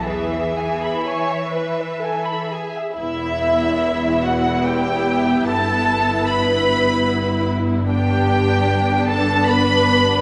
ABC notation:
X:1
M:3/4
L:1/16
Q:1/4=73
K:E
V:1 name="Violin section"
e12 | [K:Em] e6 f2 g4 | a4 b6 z2 | g6 a2 b4 |]
V:2 name="Violin section"
B e g b g e B e g b g e | [K:Em] E6 F2 G4 | A4 B6 z2 | G6 A2 B4 |]
V:3 name="Viola section"
G4 c2 B2 A2 G2 | [K:Em] [B,E]12- | [B,E]12 | [B,D]12 |]
V:4 name="Cello section" clef=bass
E,8- E,2 z2 | [K:Em] E,,12 | G,,12- | G,,12 |]
V:5 name="Double bass section" clef=bass
E,,4 z8 | [K:Em] E,,,12 | G,,,12- | G,,,12 |]